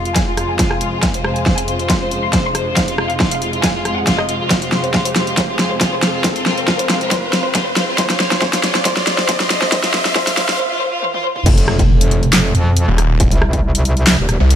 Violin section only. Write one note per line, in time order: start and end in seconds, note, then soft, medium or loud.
0.05 0.13 F4 medium
0.16 0.24 G#5 medium
0.27 0.35 F4 medium
0.37 0.46 F4 medium
0.49 0.57 G#5 medium
0.59 0.68 F4 medium
0.71 0.78 G#5 medium
0.81 0.90 F4 medium
0.92 1.00 F4 medium
1.03 1.11 G#5 medium
1.14 1.22 C5 medium
1.24 1.33 C5 medium
1.36 1.44 G#5 medium
1.46 1.55 C5 medium
1.58 1.65 G#5 medium
1.68 1.77 C5 medium
1.80 1.87 C5 medium
1.90 1.98 C6 medium
2.01 2.09 C5 medium
2.11 2.20 C5 medium
2.23 2.31 C6 medium
2.33 2.42 C5 medium
2.45 2.52 C6 medium
2.55 2.64 C5 medium
2.66 2.74 C5 medium
2.77 2.85 F5 medium
2.88 2.96 F4 medium
2.99 3.07 F4 medium
3.10 3.18 F5 medium
3.20 3.29 F4 medium
3.32 3.39 F5 medium
3.42 3.51 F4 medium
3.53 3.61 F4 medium
3.64 3.72 G#5 medium
3.75 3.83 F4 medium
3.85 3.94 F4 medium
3.97 4.05 F#5 medium
4.07 4.16 F4 medium
4.19 4.26 D#5 medium
4.29 4.38 F4 medium
4.40 4.48 F4 medium
4.51 4.59 C5 medium
4.62 4.70 F4 medium
4.72 4.81 F4 medium
4.84 4.92 C5 medium
4.94 5.03 F4 medium
5.05 5.13 C5 medium
5.16 5.24 F4 medium
5.27 5.35 F4 medium
5.37 5.46 C5 medium
5.49 5.57 F4 medium
5.59 5.68 F4 medium
5.71 5.79 C5 medium
5.81 5.90 F4 medium
5.92 6.00 C5 medium
6.03 6.11 F4 medium
6.14 6.22 F4 medium
6.24 6.33 C5 medium
6.36 6.44 F4 medium
6.46 6.55 F4 medium
6.58 6.65 C5 medium
6.68 6.77 F4 medium
6.79 6.87 C5 medium
6.90 6.98 F4 medium
7.01 7.09 F4 medium
7.11 7.20 C5 loud
7.23 7.31 F4 medium
7.33 7.42 F4 medium
7.45 7.52 C5 medium
7.55 7.64 F4 medium
7.66 7.74 C5 medium
7.77 7.85 F4 medium
7.88 7.96 F4 medium
7.98 8.07 C5 medium
8.10 8.18 F4 medium
8.20 8.29 F4 medium
8.31 8.39 C5 medium
8.42 8.50 C5 loud
8.53 8.61 F4 medium
8.63 8.72 F4 medium
8.75 8.83 C5 medium
8.85 8.94 C5 loud
8.97 9.04 F4 medium
9.07 9.16 F4 medium
9.18 9.26 C5 medium
9.29 9.37 C5 loud
9.40 9.48 F4 medium
9.50 9.59 F4 medium
9.62 9.70 C5 medium
9.72 9.81 C5 loud
9.84 9.92 F4 medium
9.94 10.03 C5 loud
10.05 10.13 F4 medium
10.16 10.24 C5 loud
10.27 10.35 F4 medium
10.37 10.46 C5 loud
10.49 10.57 F4 medium
10.59 10.68 C5 loud
10.71 10.78 F4 medium
10.81 10.90 C5 loud
10.92 11.00 F4 medium
11.03 11.11 C5 loud
11.14 11.22 F4 medium
11.24 11.33 C5 loud
11.36 11.44 F4 medium